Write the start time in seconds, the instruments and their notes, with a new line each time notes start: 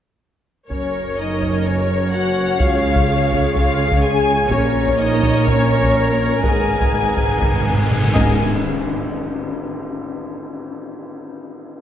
0.69 double bass section F#1, cello section F#2, woodwind section C#4 F#4 A#4 C#5, french horn section C#4, viola section A#4 C#5, violin section C#5, taiko
1.17 french horn section D#4, violin section D#5
1.42 taiko
1.64 french horn section C#4, violin section C#5
2.12 french horn section F#4, violin section F#5
2.59 double bass section C#2, cello section C#3, french horn section F4, woodwind section F4 G#4, viola section G#4, violin section F5, taiko
2.96 taiko
3.32 taiko
3.55 french horn section F4, violin section F5, taiko
3.91 taiko
4.03 french horn section G#4, violin section G#5
4.51 double bass section A#1, cello section A#2, french horn section C#4, viola section A#4 C#5, violin section C#5, woodwind section A#5, taiko
4.87 taiko
4.98 french horn section D#4, violin section D#5
5.23 taiko
5.46 french horn section C#4, violin section C#5, taiko
5.83 taiko
6.19 french horn section C#4, violin section C#5
6.42 double bass section G#1, cello section G#2, woodwind section B3 D#4 D#5, french horn section G#4, viola section B4, violin section G#5, taiko, cymbal swell
6.67 timpani G#2
6.74 timpani G#2
6.80 timpani G#2, taiko
6.90 timpani G#2
6.98 timpani G#2
7.06 timpani G#2
7.13 timpani G#2, taiko
7.20 timpani G#2
7.28 timpani G#2
7.36 timpani G#2
7.41 timpani G#2, taiko
7.50 timpani G#2, taiko low
7.59 timpani G#2
7.66 timpani G#2, taiko low
7.75 timpani G#2
7.82 timpani G#2
7.90 timpani G#2, taiko low-mid
7.98 timpani G#2
8.03 timpani G#2, taiko low-mid
8.13 double bass section G#1, timpani G#2, cello section G#2, woodwind section B3 D#4 A#4 D#5, viola section B3 A#4, french horn section G#4, violin section G#5, taiko, tam-tam, impact